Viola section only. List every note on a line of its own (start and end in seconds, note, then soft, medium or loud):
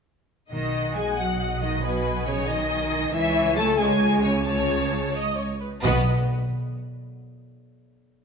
0.52 3.09 D#5 soft
0.52 1.79 F#5 soft
1.83 3.10 G#5 soft
3.12 3.75 C#5 medium
3.12 3.74 G#5 medium
3.78 4.45 C#5 medium
3.78 4.44 G#5 medium
4.45 5.09 C#5 medium
4.45 5.10 A5 medium
5.14 5.36 D#5 medium
5.37 5.61 C#5 medium
5.61 5.69 B4 medium
5.83 6.10 F#4 medium
5.83 6.10 D#5 medium